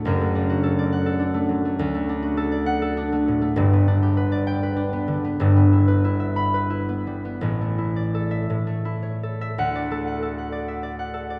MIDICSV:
0, 0, Header, 1, 2, 480
1, 0, Start_track
1, 0, Key_signature, 2, "major"
1, 0, Tempo, 579151
1, 40, Time_signature, 6, 3, 24, 8
1, 1959, Tempo, 597610
1, 3879, Tempo, 650759
1, 5319, Tempo, 712589
1, 7239, Tempo, 630915
1, 8637, End_track
2, 0, Start_track
2, 0, Title_t, "Harp"
2, 0, Program_c, 0, 46
2, 0, Note_on_c, 0, 57, 57
2, 0, Note_on_c, 0, 62, 63
2, 0, Note_on_c, 0, 66, 56
2, 0, Note_on_c, 0, 69, 60
2, 0, Note_on_c, 0, 74, 55
2, 0, Note_on_c, 0, 78, 80
2, 42, Note_on_c, 0, 30, 78
2, 53, Note_on_c, 0, 42, 80
2, 164, Note_off_c, 0, 57, 0
2, 174, Note_on_c, 0, 57, 57
2, 280, Note_off_c, 0, 62, 0
2, 289, Note_on_c, 0, 62, 63
2, 401, Note_off_c, 0, 66, 0
2, 411, Note_on_c, 0, 66, 62
2, 515, Note_off_c, 0, 69, 0
2, 525, Note_on_c, 0, 69, 68
2, 641, Note_off_c, 0, 74, 0
2, 651, Note_on_c, 0, 74, 65
2, 757, Note_off_c, 0, 78, 0
2, 767, Note_on_c, 0, 78, 93
2, 869, Note_off_c, 0, 69, 0
2, 879, Note_on_c, 0, 69, 69
2, 979, Note_off_c, 0, 62, 0
2, 989, Note_on_c, 0, 62, 65
2, 1101, Note_off_c, 0, 57, 0
2, 1111, Note_on_c, 0, 57, 62
2, 1234, Note_on_c, 0, 54, 62
2, 1357, Note_off_c, 0, 57, 0
2, 1367, Note_on_c, 0, 57, 63
2, 1485, Note_on_c, 0, 38, 88
2, 1494, Note_off_c, 0, 30, 0
2, 1500, Note_off_c, 0, 42, 0
2, 1601, Note_off_c, 0, 57, 0
2, 1611, Note_on_c, 0, 57, 63
2, 1723, Note_off_c, 0, 62, 0
2, 1733, Note_on_c, 0, 62, 63
2, 1834, Note_off_c, 0, 66, 0
2, 1844, Note_on_c, 0, 66, 68
2, 1956, Note_off_c, 0, 69, 0
2, 1966, Note_on_c, 0, 69, 74
2, 2073, Note_off_c, 0, 74, 0
2, 2082, Note_on_c, 0, 74, 69
2, 2188, Note_off_c, 0, 78, 0
2, 2198, Note_on_c, 0, 78, 97
2, 2314, Note_off_c, 0, 69, 0
2, 2324, Note_on_c, 0, 69, 69
2, 2436, Note_off_c, 0, 62, 0
2, 2446, Note_on_c, 0, 62, 74
2, 2560, Note_off_c, 0, 57, 0
2, 2570, Note_on_c, 0, 57, 69
2, 2695, Note_on_c, 0, 45, 64
2, 2795, Note_off_c, 0, 57, 0
2, 2804, Note_on_c, 0, 57, 66
2, 2919, Note_on_c, 0, 31, 85
2, 2930, Note_on_c, 0, 43, 95
2, 2942, Note_off_c, 0, 78, 0
2, 2944, Note_off_c, 0, 54, 0
2, 2944, Note_off_c, 0, 57, 0
2, 2944, Note_off_c, 0, 66, 0
2, 2945, Note_off_c, 0, 69, 0
2, 2948, Note_off_c, 0, 38, 0
2, 2950, Note_off_c, 0, 45, 0
2, 3057, Note_on_c, 0, 59, 64
2, 3164, Note_off_c, 0, 62, 0
2, 3174, Note_on_c, 0, 62, 66
2, 3293, Note_on_c, 0, 67, 62
2, 3409, Note_on_c, 0, 71, 72
2, 3520, Note_off_c, 0, 74, 0
2, 3529, Note_on_c, 0, 74, 70
2, 3649, Note_on_c, 0, 79, 92
2, 3769, Note_off_c, 0, 71, 0
2, 3778, Note_on_c, 0, 71, 71
2, 3878, Note_off_c, 0, 62, 0
2, 3887, Note_on_c, 0, 62, 67
2, 3998, Note_off_c, 0, 59, 0
2, 4007, Note_on_c, 0, 59, 68
2, 4117, Note_on_c, 0, 50, 63
2, 4233, Note_off_c, 0, 59, 0
2, 4241, Note_on_c, 0, 59, 63
2, 4344, Note_off_c, 0, 31, 0
2, 4353, Note_off_c, 0, 43, 0
2, 4353, Note_on_c, 0, 31, 83
2, 4362, Note_on_c, 0, 43, 87
2, 4377, Note_off_c, 0, 50, 0
2, 4378, Note_off_c, 0, 62, 0
2, 4379, Note_off_c, 0, 74, 0
2, 4467, Note_off_c, 0, 59, 0
2, 4476, Note_on_c, 0, 59, 59
2, 4595, Note_on_c, 0, 64, 59
2, 4697, Note_off_c, 0, 71, 0
2, 4706, Note_on_c, 0, 71, 60
2, 4822, Note_off_c, 0, 64, 0
2, 4831, Note_on_c, 0, 64, 70
2, 4943, Note_on_c, 0, 76, 64
2, 5064, Note_on_c, 0, 83, 86
2, 5187, Note_off_c, 0, 71, 0
2, 5196, Note_on_c, 0, 71, 62
2, 5306, Note_off_c, 0, 64, 0
2, 5314, Note_on_c, 0, 64, 62
2, 5433, Note_off_c, 0, 59, 0
2, 5441, Note_on_c, 0, 59, 57
2, 5563, Note_on_c, 0, 55, 55
2, 5676, Note_off_c, 0, 59, 0
2, 5684, Note_on_c, 0, 59, 56
2, 5793, Note_on_c, 0, 33, 70
2, 5805, Note_on_c, 0, 45, 73
2, 5819, Note_off_c, 0, 83, 0
2, 5821, Note_off_c, 0, 31, 0
2, 5823, Note_off_c, 0, 71, 0
2, 5824, Note_off_c, 0, 59, 0
2, 5825, Note_off_c, 0, 43, 0
2, 5825, Note_off_c, 0, 55, 0
2, 5826, Note_off_c, 0, 67, 0
2, 5827, Note_off_c, 0, 79, 0
2, 5929, Note_on_c, 0, 57, 52
2, 6035, Note_off_c, 0, 64, 0
2, 6043, Note_on_c, 0, 64, 54
2, 6165, Note_on_c, 0, 74, 56
2, 6288, Note_on_c, 0, 69, 64
2, 6390, Note_off_c, 0, 76, 0
2, 6398, Note_on_c, 0, 76, 73
2, 6518, Note_off_c, 0, 45, 0
2, 6526, Note_on_c, 0, 45, 65
2, 6533, Note_off_c, 0, 33, 0
2, 6537, Note_off_c, 0, 74, 0
2, 6632, Note_off_c, 0, 57, 0
2, 6640, Note_on_c, 0, 57, 55
2, 6755, Note_off_c, 0, 64, 0
2, 6764, Note_on_c, 0, 64, 61
2, 6881, Note_on_c, 0, 73, 58
2, 7012, Note_off_c, 0, 69, 0
2, 7021, Note_on_c, 0, 69, 61
2, 7134, Note_off_c, 0, 76, 0
2, 7142, Note_on_c, 0, 76, 78
2, 7258, Note_on_c, 0, 38, 73
2, 7262, Note_off_c, 0, 73, 0
2, 7262, Note_on_c, 0, 78, 86
2, 7265, Note_off_c, 0, 64, 0
2, 7266, Note_off_c, 0, 45, 0
2, 7270, Note_off_c, 0, 76, 0
2, 7390, Note_on_c, 0, 74, 61
2, 7498, Note_off_c, 0, 57, 0
2, 7502, Note_off_c, 0, 69, 0
2, 7507, Note_on_c, 0, 57, 51
2, 7511, Note_on_c, 0, 69, 57
2, 7622, Note_off_c, 0, 78, 0
2, 7631, Note_on_c, 0, 78, 59
2, 7738, Note_off_c, 0, 69, 0
2, 7748, Note_on_c, 0, 69, 62
2, 7858, Note_off_c, 0, 78, 0
2, 7867, Note_on_c, 0, 78, 58
2, 7964, Note_off_c, 0, 74, 0
2, 7973, Note_on_c, 0, 74, 57
2, 8094, Note_on_c, 0, 76, 50
2, 8198, Note_off_c, 0, 74, 0
2, 8207, Note_on_c, 0, 74, 58
2, 8290, Note_off_c, 0, 76, 0
2, 8320, Note_off_c, 0, 78, 0
2, 8329, Note_on_c, 0, 78, 61
2, 8432, Note_off_c, 0, 69, 0
2, 8441, Note_on_c, 0, 69, 55
2, 8557, Note_off_c, 0, 74, 0
2, 8566, Note_on_c, 0, 74, 57
2, 8637, Note_off_c, 0, 38, 0
2, 8637, Note_off_c, 0, 57, 0
2, 8637, Note_off_c, 0, 69, 0
2, 8637, Note_off_c, 0, 74, 0
2, 8637, Note_off_c, 0, 78, 0
2, 8637, End_track
0, 0, End_of_file